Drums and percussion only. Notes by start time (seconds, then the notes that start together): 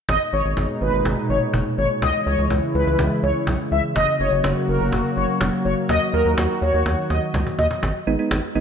0.09 cajon bass
0.33 cajon slap
0.57 cajon bass
0.81 cajon slap
1.05 cajon bass
1.30 cajon slap
1.54 cajon bass
1.78 cajon slap
2.02 cajon bass
2.27 cajon slap
2.50 cajon bass
2.75 cajon slap
2.99 cajon bass
3.23 cajon slap
3.47 cajon bass
3.72 cajon slap
3.96 cajon bass
4.20 cajon slap
4.44 cajon bass, cajon slap
4.68 cajon slap
4.92 cajon bass
5.17 cajon slap
5.41 cajon bass, cajon slap
5.65 cajon slap
5.89 cajon bass
6.14 cajon slap
6.38 cajon bass, cajon slap
6.62 cajon slap
6.86 cajon bass, cajon slap
7.10 cajon slap
7.34 cajon bass
7.47 cajon bass
7.59 cajon bass
7.71 cajon bass
7.83 cajon bass
8.07 cajon slap
8.31 cajon bass, cajon slap
8.55 cajon slap